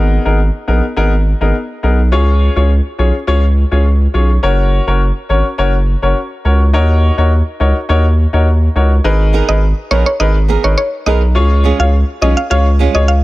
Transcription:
Already playing: G#1 B3 D#4 G#4 A#4
0.25 G#1 B3 D#4 G#4 A#4
0.68 A#1 B3 D#4 G#4 A#4
0.96 G#1 B3 D#4 G#4 A#4
1.41 G#1 B3 D#4 G#4 A#4
1.83 B1 B3 D#4 G#4 A#4
2.12 C#2 C#4 F4 G#4 C#5
2.56 C#2 C#4 F4 G#4 C#5
2.98 B1 C#4 F4 G#4 C#5
3.27 C#2 C#4 F4 G#4 C#5
3.71 C#2 C#4 F4 G#4 C#5
4.14 B1 C#4 F4 G#4 C#5
4.43 F#1 C#4 F#4 A#4 C#5
4.87 F#1 C#4 F#4 A#4 C#5
5.29 G#1 C#4 F#4 A#4 C#5
5.58 F#1 C#4 F#4 A#4 C#5
6.02 F#1 C#4 F#4 A#4 C#5
6.45 C#2 C#4 F#4 A#4 C#5
6.73 D#2 D#4 F#4 A#4 C#5
7.18 D#2 D#4 F#4 A#4 C#5
7.60 C#2 D#4 F#4 A#4 C#5
7.89 D#2 D#4 F#4 A#4 C#5
8.33 D#2 D#4 F#4 A#4 C#5
8.76 C#2 D#4 F#4 A#4 C#5
9.04 G#1 D#4 G#4 A#4 B4
9.33 B3 D#4 G#4 A#4
9.48 G#1 D#4 G#4 A#4 B4 D#5
9.91 A#1 B3 D#4 G#4 A#4 B4 C#5
10.06 C#5
10.20 G#1 D#4 G#4 A#4 B4 D#5
10.48 B3 D#4 G#4 A#4
10.64 G#1 D#4 G#4 A#4 B4 C#5
10.78 C#5
11.06 B1 B3 D#4 G#4 A#4 B4 D#5
11.35 C#2 C#4 F4 G#4 C#5
11.64 G#3 C#4 F4 G#4
11.79 C#2 C#4 F4 G#4 C#5 F5
12.21 B1 G#3 C#4 F4 G#4 C#5 D#5
12.37 F5
12.50 C#2 C#4 F4 G#4 C#5 F5
12.79 G#3 C#4 F4 G#4
12.94 C#2 C#4 F4 G#4 C#5 D#5
13.08 F5

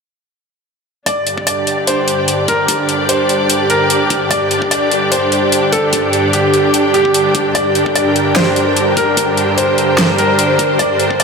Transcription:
1.06 G2 D3 D4 G4 D5, kick, closed hi-hat
1.27 closed hi-hat
1.31 G4
1.38 D5, kick
1.47 D5, closed hi-hat
1.67 closed hi-hat
1.87 C5, closed hi-hat
1.96 G5
2.08 closed hi-hat
2.28 closed hi-hat
2.48 A#4, kick, closed hi-hat
2.68 kick, closed hi-hat
2.89 closed hi-hat
3.09 C5, closed hi-hat
3.29 closed hi-hat
3.50 closed hi-hat
3.70 A#4, closed hi-hat
3.90 closed hi-hat
4.10 kick, closed hi-hat
4.31 D5, kick, closed hi-hat
4.51 closed hi-hat
4.62 kick
4.71 D5, closed hi-hat
4.91 closed hi-hat
5.12 C5, closed hi-hat
5.32 closed hi-hat
5.52 closed hi-hat
5.72 A4, kick, closed hi-hat
5.93 kick, closed hi-hat
6.13 closed hi-hat
6.33 G4, closed hi-hat
6.54 closed hi-hat
6.74 closed hi-hat
6.94 G4, closed hi-hat
7.05 kick
7.14 closed hi-hat
7.35 kick, closed hi-hat
7.55 A#4 D5, kick, closed hi-hat
7.75 closed hi-hat
7.86 kick
7.95 D5, closed hi-hat
8.16 closed hi-hat
8.36 C5, snare, closed hi-hat
8.56 closed hi-hat
8.77 closed hi-hat
8.85 C5
8.97 A#4, kick, closed hi-hat
9.17 kick, closed hi-hat
9.37 closed hi-hat
9.58 C5, closed hi-hat
9.78 closed hi-hat
9.98 snare, closed hi-hat
10.18 A#4, closed hi-hat
10.39 closed hi-hat
10.59 kick, closed hi-hat
10.79 D5, kick, closed hi-hat
11.00 closed hi-hat
11.11 kick
11.20 D5, closed hi-hat

